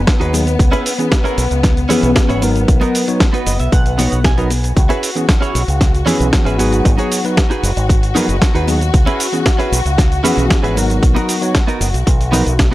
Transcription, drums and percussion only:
0.07 kick, snare, closed hi-hat, shaker
0.21 closed hi-hat, shaker
0.33 open hi-hat, high conga, shaker
0.47 closed hi-hat, shaker
0.59 kick, closed hi-hat, shaker
0.73 closed hi-hat, muted conga, shaker
0.86 open hi-hat, shaker
0.99 closed hi-hat, shaker
1.12 kick, snare, closed hi-hat, shaker
1.25 closed hi-hat, shaker
1.38 open hi-hat, shaker
1.51 closed hi-hat, shaker
1.63 kick, snare, closed hi-hat, shaker
1.77 closed hi-hat, shaker
1.90 open hi-hat, high conga, low conga, shaker
2.03 closed hi-hat, shaker
2.16 kick, snare, closed hi-hat, shaker
2.30 closed hi-hat, shaker
2.42 open hi-hat, high conga, shaker
2.56 closed hi-hat, shaker
2.68 kick, closed hi-hat, shaker
2.81 closed hi-hat, muted conga, shaker
2.95 open hi-hat, shaker
3.08 closed hi-hat, shaker
3.20 kick, snare, closed hi-hat, shaker
3.34 closed hi-hat, muted conga, shaker
3.46 open hi-hat, shaker
3.60 closed hi-hat, shaker
3.72 kick, closed hi-hat, shaker
3.86 closed hi-hat, shaker
3.98 open hi-hat, high conga, low conga, shaker
4.12 closed hi-hat, shaker
4.24 kick, snare, closed hi-hat, shaker
4.38 closed hi-hat, shaker
4.50 open hi-hat, high conga, shaker
4.64 closed hi-hat, shaker
4.77 kick, closed hi-hat, shaker
4.90 closed hi-hat, muted conga, shaker
5.03 open hi-hat, shaker
5.17 closed hi-hat, shaker
5.29 kick, snare, closed hi-hat, shaker
5.42 closed hi-hat, shaker
5.55 open hi-hat, shaker
5.68 closed hi-hat, shaker
5.81 kick, snare, closed hi-hat, shaker
5.95 closed hi-hat, shaker
6.06 open hi-hat, high conga, low conga, shaker
6.21 closed hi-hat, shaker
6.33 kick, snare, closed hi-hat, shaker
6.46 closed hi-hat, shaker
6.59 open hi-hat, high conga, shaker
6.73 closed hi-hat, shaker
6.85 kick, closed hi-hat, shaker
6.98 closed hi-hat, muted conga, shaker
7.12 open hi-hat, shaker
7.25 closed hi-hat, shaker
7.37 kick, snare, closed hi-hat, shaker
7.51 closed hi-hat, muted conga, shaker
7.63 open hi-hat, shaker
7.77 closed hi-hat, shaker
7.89 kick, closed hi-hat, shaker
8.03 closed hi-hat, shaker
8.15 open hi-hat, high conga, low conga, shaker
8.29 closed hi-hat, shaker
8.42 kick, snare, closed hi-hat, shaker
8.55 closed hi-hat, shaker
8.67 open hi-hat, high conga, shaker
8.81 closed hi-hat, shaker
8.94 kick, closed hi-hat, shaker
9.07 closed hi-hat, muted conga, shaker
9.20 open hi-hat, shaker
9.33 closed hi-hat, shaker
9.46 kick, snare, closed hi-hat, shaker
9.60 closed hi-hat, shaker
9.73 open hi-hat, shaker
9.86 closed hi-hat, shaker
9.98 kick, snare, closed hi-hat, shaker
10.12 closed hi-hat, shaker
10.24 open hi-hat, high conga, low conga, shaker
10.38 closed hi-hat, shaker
10.50 kick, snare, closed hi-hat, shaker
10.64 closed hi-hat, shaker
10.76 open hi-hat, high conga, shaker
10.90 closed hi-hat, shaker
11.03 kick, closed hi-hat, shaker
11.16 closed hi-hat, muted conga, shaker
11.29 open hi-hat, shaker
11.42 closed hi-hat, shaker
11.55 kick, snare, closed hi-hat, shaker
11.68 closed hi-hat, muted conga, shaker
11.81 open hi-hat, shaker
11.94 closed hi-hat, shaker
12.07 kick, closed hi-hat, shaker
12.21 closed hi-hat, shaker
12.33 open hi-hat, high conga, low conga, shaker
12.47 closed hi-hat, shaker
12.59 kick, snare, closed hi-hat, shaker

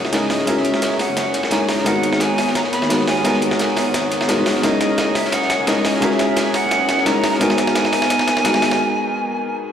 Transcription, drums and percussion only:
0.05 snare
0.13 snare, closed hi-hat, ride
0.22 snare
0.30 snare, open hi-hat, ride
0.39 snare
0.47 snare, closed hi-hat, ride
0.57 snare
0.65 closed hi-hat, ride
0.74 snare
0.82 snare, closed hi-hat, ride
0.91 snare
0.99 snare, open hi-hat, ride
1.17 snare, closed hi-hat, ride
1.34 snare, closed hi-hat, ride
1.43 snare
1.51 snare, closed hi-hat, ride
1.68 snare, open hi-hat, ride
1.78 snare
1.86 snare, closed hi-hat, ride
2.03 closed hi-hat, ride
2.13 snare, ride
2.20 snare, closed hi-hat, ride
2.38 snare, open hi-hat, ride
2.47 snare
2.55 snare, closed hi-hat, ride
2.64 snare
2.73 snare, closed hi-hat, ride
2.82 snare
2.90 snare, closed hi-hat, ride
2.99 snare
3.07 snare, open hi-hat, ride
3.16 snare
3.24 snare, closed hi-hat, ride
3.34 snare
3.41 closed hi-hat, ride
3.51 snare
3.59 snare, closed hi-hat, ride
3.68 snare
3.76 snare, open hi-hat, ride
3.94 snare, closed hi-hat, ride
4.11 snare, closed hi-hat, ride
4.21 snare
4.28 snare, closed hi-hat, ride
4.46 snare, open hi-hat, ride
4.55 snare
4.63 snare, closed hi-hat, ride
4.80 snare, closed hi-hat, ride
4.90 ride
4.98 snare, closed hi-hat, ride
5.15 snare, open hi-hat, ride
5.25 snare
5.32 snare, closed hi-hat, ride
5.42 snare
5.49 snare, closed hi-hat, ride
5.67 snare, closed hi-hat, ride
5.76 snare
5.85 snare, open hi-hat, ride
5.94 snare
6.02 snare, closed hi-hat, ride
6.11 snare
6.19 snare, closed hi-hat, ride
6.36 snare, closed hi-hat, ride
6.46 snare
6.54 snare, open hi-hat, ride
6.71 snare, closed hi-hat, ride
6.88 snare, closed hi-hat, ride
6.98 snare
7.06 snare, closed hi-hat, ride
7.24 snare, open hi-hat, ride
7.33 snare
7.41 snare, closed hi-hat, ride
7.50 snare
7.57 snare, closed hi-hat, ride
7.67 snare, ride
7.75 snare, closed hi-hat, ride
7.85 snare
7.92 snare, open hi-hat, ride
8.02 snare
8.10 snare, closed hi-hat, ride
8.19 snare
8.28 snare, closed hi-hat, ride
8.37 snare
8.45 snare, closed hi-hat, ride
8.54 snare
8.62 snare, open hi-hat, ride
8.71 snare

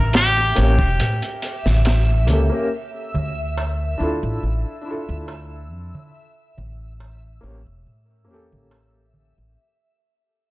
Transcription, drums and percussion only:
0.13 snare, closed hi-hat, darbuka tek
0.36 closed hi-hat
0.56 closed hi-hat
0.79 kick
1.00 closed hi-hat
1.22 closed hi-hat
1.42 closed hi-hat
1.66 snare, darbuka dum
1.85 snare, closed hi-hat, darbuka tek
2.28 closed hi-hat, darbuka dum
3.14 darbuka dum
3.58 darbuka tek
5.28 darbuka tek
5.95 darbuka dum
6.58 darbuka dum
7.00 darbuka tek
8.52 darbuka dum
8.71 darbuka tek
9.14 darbuka dum

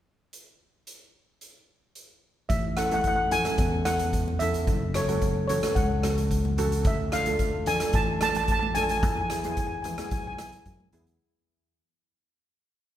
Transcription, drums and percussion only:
0.33 closed hi-hat
0.87 closed hi-hat
1.41 closed hi-hat
1.95 closed hi-hat
2.50 kick, closed hi-hat
2.77 cross-stick, closed hi-hat
2.91 closed hi-hat, high conga
3.04 kick, closed hi-hat
3.31 closed hi-hat, low conga
3.45 cross-stick, closed hi-hat, high conga
3.58 kick, closed hi-hat
3.85 cross-stick, closed hi-hat, high conga
3.99 closed hi-hat
4.13 kick, closed hi-hat
4.28 high conga
4.40 closed hi-hat, low conga
4.54 closed hi-hat
4.67 kick, closed hi-hat
4.94 cross-stick, closed hi-hat
5.09 closed hi-hat, high conga
5.21 kick, closed hi-hat
5.49 closed hi-hat, low conga
5.63 cross-stick, closed hi-hat, high conga
5.76 kick, closed hi-hat
6.03 cross-stick, closed hi-hat, high conga
6.18 closed hi-hat
6.31 kick, closed hi-hat
6.45 high conga
6.58 closed hi-hat, low conga
6.72 closed hi-hat
6.84 kick, closed hi-hat
7.12 cross-stick, closed hi-hat
7.26 closed hi-hat, high conga
7.39 kick, closed hi-hat
7.66 closed hi-hat, low conga
7.80 cross-stick, closed hi-hat, high conga
7.93 kick, closed hi-hat
8.21 cross-stick, closed hi-hat, high conga
8.35 closed hi-hat
8.48 kick, closed hi-hat
8.63 high conga
8.75 closed hi-hat, low conga
8.89 closed hi-hat
9.03 kick, closed hi-hat
9.17 low conga
9.30 cross-stick, closed hi-hat
9.44 closed hi-hat, high conga
9.57 kick, closed hi-hat
9.84 closed hi-hat, high conga, low conga
9.98 cross-stick, closed hi-hat, high conga
10.11 kick, closed hi-hat
10.38 cross-stick, closed hi-hat, high conga
10.52 closed hi-hat
10.65 kick, closed hi-hat
10.80 high conga
10.93 closed hi-hat
11.07 closed hi-hat

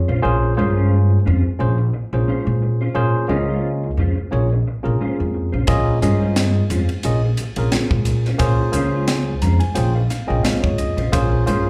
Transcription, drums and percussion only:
5.67 kick, hi-hat pedal, ride
6.02 hi-hat pedal, ride
6.36 snare, hi-hat pedal, ride
6.70 hi-hat pedal, ride
6.89 ride
7.03 hi-hat pedal, ride
7.37 hi-hat pedal, ride
7.56 ride
7.72 snare, hi-hat pedal, ride
7.91 kick
8.05 hi-hat pedal, ride
8.25 snare
8.39 kick, hi-hat pedal, ride
8.73 hi-hat pedal, ride
9.08 snare, hi-hat pedal, ride
9.42 hi-hat pedal, ride
9.60 ride
9.75 hi-hat pedal, ride
10.10 snare, hi-hat pedal, ride
10.45 snare, hi-hat pedal, ride
10.64 kick
10.78 hi-hat pedal, ride
10.98 ride
11.13 kick, hi-hat pedal, ride
11.47 hi-hat pedal, ride

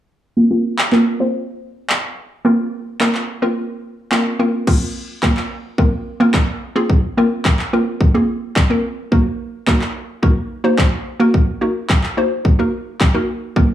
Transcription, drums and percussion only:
0.79 clap
0.93 clap
1.90 clap
3.01 clap
3.15 clap
4.12 clap
4.67 kick, crash
5.23 kick, clap
5.37 clap
5.78 kick
6.34 kick, clap
6.90 kick
7.45 kick, clap
7.59 clap
8.01 kick
8.56 kick, clap
9.12 kick
9.67 kick, clap
9.81 clap
10.23 kick
10.78 kick, clap
11.34 kick
11.90 kick, clap
12.04 clap
12.45 kick
13.01 kick, clap
13.56 kick

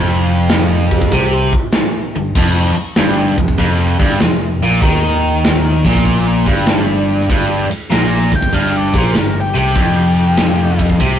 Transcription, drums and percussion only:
0.10 snare
0.49 snare, open hi-hat
0.91 kick
1.02 kick
1.11 kick, open hi-hat
1.53 kick
1.72 snare, open hi-hat
2.35 kick, crash
2.56 snare
2.96 snare, open hi-hat
3.38 kick
3.48 kick
3.57 kick, open hi-hat
4.00 kick
4.20 snare, open hi-hat
4.82 kick, open hi-hat
5.03 snare
5.44 snare, open hi-hat
5.85 kick
5.95 kick
6.04 kick, open hi-hat
6.46 kick
6.66 snare, open hi-hat
7.20 snare
7.30 kick, ride
7.71 ride
7.92 snare, ride
8.32 kick, ride
8.42 kick
8.53 kick, ride
8.94 kick, ride
9.14 snare, ride
9.55 ride
9.75 kick, ride
10.16 ride
10.37 snare, ride
10.79 kick, ride
10.89 kick
11.00 kick, ride

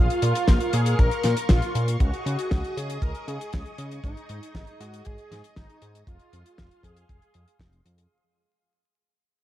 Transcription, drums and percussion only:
0.10 closed hi-hat
0.22 closed hi-hat
0.35 closed hi-hat
0.48 kick, snare, closed hi-hat
0.60 closed hi-hat
0.73 closed hi-hat
0.86 closed hi-hat
0.99 kick, closed hi-hat
1.11 closed hi-hat
1.24 snare, closed hi-hat
1.37 closed hi-hat
1.49 kick, snare, closed hi-hat
1.62 closed hi-hat
1.75 closed hi-hat
1.88 closed hi-hat
2.00 kick, closed hi-hat
2.13 closed hi-hat
2.26 closed hi-hat
2.39 closed hi-hat
2.51 kick, snare, closed hi-hat
2.64 closed hi-hat
2.77 closed hi-hat
2.90 closed hi-hat
3.02 kick, closed hi-hat
3.15 closed hi-hat
3.28 closed hi-hat
3.41 closed hi-hat
3.53 kick, snare, closed hi-hat
3.66 closed hi-hat
3.78 closed hi-hat
3.92 closed hi-hat
4.04 kick, closed hi-hat
4.17 closed hi-hat
4.29 closed hi-hat
4.43 closed hi-hat
4.55 kick, snare, closed hi-hat
4.67 closed hi-hat
4.81 closed hi-hat
4.94 closed hi-hat
5.05 kick, closed hi-hat
5.18 closed hi-hat
5.32 snare, closed hi-hat
5.44 closed hi-hat
5.56 kick, snare, closed hi-hat
5.70 closed hi-hat
5.82 closed hi-hat
5.95 closed hi-hat
6.07 kick, closed hi-hat
6.19 closed hi-hat
6.33 closed hi-hat
6.46 closed hi-hat
6.58 kick, snare, closed hi-hat
6.71 closed hi-hat
6.83 kick, closed hi-hat
6.97 closed hi-hat
7.09 kick, closed hi-hat
7.22 closed hi-hat
7.34 closed hi-hat
7.48 closed hi-hat
7.59 kick, snare, closed hi-hat
7.73 closed hi-hat
7.86 closed hi-hat
7.98 closed hi-hat

